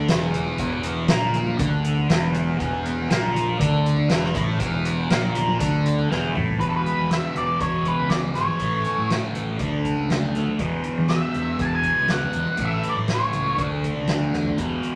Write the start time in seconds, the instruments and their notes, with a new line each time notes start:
0.08 fingered electric bass E1, distorted electric guitar E2 E3, snare, closed hi-hat
0.34 closed hi-hat, low conga
0.58 fingered electric bass E1, distorted electric guitar E2 E3, kick, closed hi-hat
0.83 closed hi-hat
1.08 fingered electric bass A#1, distorted electric guitar A#2 A#3, snare, closed hi-hat
1.21 high conga
1.34 closed hi-hat, low conga
1.47 high conga
1.58 fingered electric bass D2, distorted electric guitar D3 D4, kick, closed hi-hat, high conga
1.84 closed hi-hat
1.97 low conga
2.09 fingered electric bass E1, distorted electric guitar E2 E3, snare, closed hi-hat
2.34 closed hi-hat, low conga
2.58 fingered electric bass E1, distorted electric guitar E2 E3, kick, closed hi-hat
2.85 closed hi-hat
3.10 fingered electric bass A#1, distorted electric guitar A#2 A#3, snare, closed hi-hat
3.23 high conga
3.34 closed hi-hat, low conga
3.46 high conga
3.58 fingered electric bass D2, distorted electric guitar D3 D4, kick, closed hi-hat, high conga
3.86 closed hi-hat
3.96 low conga
4.08 fingered electric bass E1, distorted electric guitar E2 E3, snare, closed hi-hat
4.24 snare
4.35 fingered electric bass A1, distorted electric guitar A2 A3, kick, closed hi-hat, low conga
4.59 fingered electric bass E1, distorted electric guitar E2 E3, kick, closed hi-hat
4.85 closed hi-hat
5.09 fingered electric bass A#1, distorted electric guitar A#2 A#3, snare, closed hi-hat
5.23 high conga
5.35 closed hi-hat, low conga
5.48 high conga
5.59 fingered electric bass D2, distorted electric guitar D3 D4, kick, closed hi-hat, high conga
5.86 closed hi-hat
5.99 low conga
6.09 fingered electric bass E1, distorted electric guitar E2 E3, snare
6.34 fingered electric bass A1, distorted electric guitar A2 A3, mid tom, high conga, low conga
6.48 floor tom
6.58 fingered electric bass E1, distorted electric guitar E2 B2 E3, lead electric guitar B4, kick, closed hi-hat
6.69 lead electric guitar A4
6.76 lead electric guitar B4
6.85 closed hi-hat, low conga
6.96 fingered electric bass E2, high conga
7.10 lead electric guitar E5, snare, closed hi-hat, low conga
7.34 fingered electric bass E1, lead electric guitar D5, closed hi-hat, low conga
7.60 fingered electric bass E1, lead electric guitar C#5, kick, closed hi-hat
7.85 lead electric guitar B4, kick, closed hi-hat
7.98 fingered electric bass C#2
8.09 lead electric guitar D5, snare, closed hi-hat, high conga
8.23 high conga
8.34 fingered electric bass G#1, lead electric guitar C#5, snare, closed hi-hat, low conga
8.47 high conga
8.59 fingered electric bass A1, distorted electric guitar A2 E3 A3, kick, closed hi-hat
8.84 closed hi-hat, low conga
8.96 fingered electric bass A2, high conga
9.09 snare, closed hi-hat, low conga
9.34 fingered electric bass A1, closed hi-hat, low conga
9.58 fingered electric bass D2, distorted electric guitar D3 A3 D4, kick, closed hi-hat
9.85 kick, closed hi-hat
9.97 fingered electric bass C#2
10.09 snare, closed hi-hat, high conga
10.22 high conga
10.34 fingered electric bass D2, snare, closed hi-hat, low conga
10.47 high conga
10.58 distorted electric guitar E2 B2 E3, fingered electric bass E2, kick, closed hi-hat
10.84 closed hi-hat, low conga
10.98 fingered electric bass E3, high conga
11.08 lead electric guitar E5, snare, closed hi-hat, low conga
11.34 fingered electric bass E2, closed hi-hat, low conga
11.59 fingered electric bass E2, lead electric guitar G#5, kick, closed hi-hat
11.65 lead electric guitar A5
11.75 lead electric guitar G#5
11.83 kick, closed hi-hat
11.97 fingered electric bass C#2
12.08 lead electric guitar F#5, snare, closed hi-hat, high conga
12.23 high conga
12.33 fingered electric bass E2, closed hi-hat, low conga
12.47 high conga
12.57 fingered electric bass A1, distorted electric guitar A2 E3 A3, kick, closed hi-hat
12.65 lead electric guitar E5
12.83 closed hi-hat, low conga
12.89 lead electric guitar D5
12.97 fingered electric bass A2, high conga
13.08 snare, closed hi-hat, low conga
13.14 lead electric guitar C#5
13.33 fingered electric bass C#2, closed hi-hat, high conga, low conga
13.56 fingered electric bass D2, distorted electric guitar D3 A3 D4, kick, closed hi-hat
13.83 kick, closed hi-hat
13.96 fingered electric bass C#2
14.07 fingered electric bass D2, snare, closed hi-hat, high conga
14.21 high conga
14.33 fingered electric bass E2, snare, low conga
14.45 floor tom, high conga
14.57 distorted electric guitar E2 B2 E3, fingered electric bass E2, kick, closed hi-hat
14.82 closed hi-hat, low conga